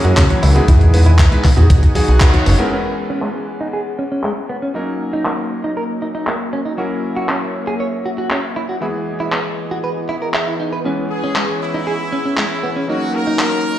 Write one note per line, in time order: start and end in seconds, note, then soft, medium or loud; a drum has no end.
0.00 1.67 E3 medium
0.00 0.27 F#3 medium
0.00 0.27 A#3 medium
0.00 0.64 A#3 medium
0.00 0.27 C#4 medium
0.00 0.27 E4 medium
0.00 0.27 G#4 loud
0.00 0.64 C#5 medium
0.00 0.66 F#5 medium
0.04 0.13 F#2 loud
0.04 0.14 F#4 medium
0.04 closed hi-hat soft
0.04 high bongo medium
0.17 0.26 C#2 medium
0.17 0.24 C#4 medium
0.17 kick loud
0.17 clap loud
0.17 closed hi-hat medium
0.29 0.51 F#3 medium
0.29 0.51 A#3 medium
0.29 0.52 C#4 medium
0.29 0.52 E4 medium
0.29 0.52 C#5 medium
0.29 closed hi-hat soft
0.29 high conga medium
0.43 0.60 C#2 medium
0.43 0.49 E4 medium
0.43 open hi-hat medium
0.55 0.90 G#3 medium
0.55 0.90 B3 medium
0.55 0.91 D#4 medium
0.55 0.91 E4 medium
0.55 0.62 F#4 medium
0.55 0.91 G#4 loud
0.55 closed hi-hat soft
0.68 1.26 E2 loud
0.68 2.70 B3 medium
0.68 0.72 E4 medium
0.68 2.70 D#5 medium
0.68 1.69 G#5 medium
0.68 kick loud
0.68 closed hi-hat medium
0.68 high conga medium
0.81 closed hi-hat soft
0.81 low conga medium
0.93 1.08 G#3 medium
0.93 1.09 B3 medium
0.93 1.09 D#4 medium
0.93 1.09 E4 medium
0.93 1.09 B4 medium
0.93 open hi-hat loud
0.93 low conga medium
1.06 1.16 E4 medium
1.06 closed hi-hat soft
1.06 high conga medium
1.19 1.25 B3 medium
1.19 kick loud
1.19 clap loud
1.19 closed hi-hat loud
1.31 1.47 G#3 medium
1.31 1.47 B3 medium
1.31 1.47 D#4 medium
1.31 1.47 E4 medium
1.31 1.47 B4 loud
1.31 closed hi-hat soft
1.44 kick medium
1.44 clap medium
1.44 open hi-hat medium
1.44 high bongo soft
1.44 high conga medium
1.57 1.66 E2 medium
1.57 1.92 D#4 medium
1.57 1.64 F#4 medium
1.57 1.92 F#4 medium
1.57 1.93 G#4 medium
1.57 closed hi-hat soft
1.57 low conga medium
1.70 1.79 B1 medium
1.70 1.76 F#4 medium
1.70 2.71 F#4 medium
1.70 2.71 F#5 medium
1.70 kick loud
1.70 closed hi-hat loud
1.83 kick medium
1.83 closed hi-hat soft
1.95 2.05 F#3 medium
1.95 2.30 D#4 medium
1.95 2.31 F#4 medium
1.95 2.31 G#4 loud
1.95 open hi-hat loud
1.95 high conga medium
2.08 2.17 B1 loud
2.08 2.18 F#4 loud
2.08 closed hi-hat soft
2.20 2.30 B4 medium
2.20 kick loud
2.20 clap loud
2.20 closed hi-hat loud
2.33 2.55 D#4 medium
2.33 2.55 F#4 medium
2.33 2.55 C#5 medium
2.33 closed hi-hat soft
2.33 high bongo medium
2.33 high conga medium
2.46 2.55 F#1 medium
2.46 2.53 B3 medium
2.46 open hi-hat medium
2.59 2.70 G#3 medium
2.59 2.70 B3 medium
2.59 2.65 B3 medium
2.59 2.70 C#4 medium
2.59 2.94 E4 medium
2.59 2.94 A#4 loud
2.59 closed hi-hat soft
2.59 high bongo medium
2.71 4.73 E3 medium
2.71 4.72 G#3 medium
2.71 4.72 B3 medium
2.71 4.73 B3 medium
2.71 2.76 C#4 medium
2.71 4.72 C#4 medium
2.71 4.73 G#4 medium
2.71 4.73 B4 medium
2.71 8.78 C#5 medium
2.71 4.73 E6 medium
3.10 3.19 C#4 medium
3.22 3.29 G#3 medium
3.22 clap loud
3.61 3.67 D#4 medium
3.73 3.80 G#4 medium
3.99 4.03 C#4 medium
4.12 4.21 C#4 medium
4.24 4.31 G#3 medium
4.24 clap loud
4.49 4.56 B3 medium
4.62 4.69 C#4 medium
4.74 6.75 F#3 medium
4.74 6.75 A#3 medium
4.74 8.78 A#3 medium
4.74 6.75 C#4 medium
4.74 4.79 D#4 medium
4.74 6.76 D#4 medium
4.74 8.78 F#4 medium
4.74 6.76 A#4 medium
4.74 6.76 D#5 medium
5.13 5.23 D#4 medium
5.25 5.32 A#3 medium
5.25 clap loud
5.64 5.70 D#4 medium
5.77 5.83 A#4 medium
6.02 6.06 D#4 medium
6.15 6.24 D#4 medium
6.27 6.34 A#3 medium
6.27 clap loud
6.53 6.59 C#4 medium
6.65 6.72 D#4 medium
6.77 8.78 F#3 medium
6.77 8.79 A#3 medium
6.77 8.79 C#4 medium
6.77 8.79 E4 medium
6.77 6.82 F#4 medium
6.77 8.79 A#4 medium
6.77 8.80 E5 medium
7.17 7.26 F#4 medium
7.29 7.36 C#4 medium
7.29 clap loud
7.67 7.74 G#4 medium
7.80 7.87 C#5 medium
8.06 8.09 F#4 medium
8.18 8.28 F#4 medium
8.30 8.37 C#4 medium
8.30 clap loud
8.56 8.63 E4 medium
8.69 8.76 F#4 medium
8.81 10.82 E3 medium
8.81 12.85 E3 medium
8.81 10.82 G#3 medium
8.81 10.82 B3 medium
8.81 12.85 B3 medium
8.81 8.86 E4 medium
8.81 12.85 G#4 medium
8.81 10.83 G#4 medium
8.81 10.83 D#5 medium
9.20 9.30 E4 medium
9.32 9.39 B3 medium
9.32 clap loud
9.71 9.77 F#4 medium
9.84 9.90 B4 medium
10.09 10.15 E4 medium
10.22 10.28 A#4 medium
10.34 10.44 E5 medium
10.34 clap loud
10.47 10.54 E4 medium
10.60 10.69 D#4 medium
10.73 10.79 B4 medium
10.84 12.86 E3 medium
10.84 12.85 G#3 medium
10.84 12.85 B3 medium
10.84 12.86 C#4 medium
10.84 10.89 C#4 medium
10.84 12.86 B4 medium
10.84 13.79 C#5 medium
11.10 11.58 G#4 medium
11.24 11.33 C#4 medium
11.36 11.43 G#3 medium
11.36 clap loud
11.61 12.85 E4 loud
11.74 11.81 D#4 medium
11.87 11.93 G#4 medium
12.12 12.16 C#4 medium
12.25 12.35 C#4 medium
12.37 12.44 G#3 medium
12.37 clap loud
12.63 12.70 B3 medium
12.76 12.82 C#4 medium
12.88 13.79 F#3 medium
12.88 13.79 A#3 medium
12.88 13.79 C#4 medium
12.88 13.79 D#4 medium
12.88 12.93 D#4 medium
12.88 13.79 D#4 medium
12.88 13.79 F#4 medium
12.88 13.14 F#4 medium
12.88 13.79 A#4 medium
13.14 13.79 A#4 loud
13.27 13.36 D#4 medium
13.39 13.46 A#3 medium
13.39 clap loud